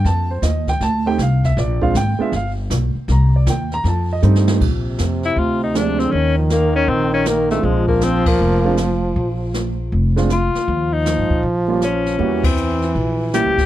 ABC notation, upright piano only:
X:1
M:4/4
L:1/8
Q:"Swing" 1/4=158
K:Bbmix
V:1 name="Upright piano"
=a c e g a [=A,CEGg] f =e | d [A,CDFf] g [A,_CDF=e] f z3 | b d g b =a e [G,=A,CE]2 | z6 [F,A,CD]2 |
z6 z [A,CDF]- | [A,CDF]2 z3 [A,CDF] z2 | z4 z [A,CDF] z2 | z4 z [G,B,_DF] z2 |
[G,B,^C_G] z4 z [=G,B,C=E] z |]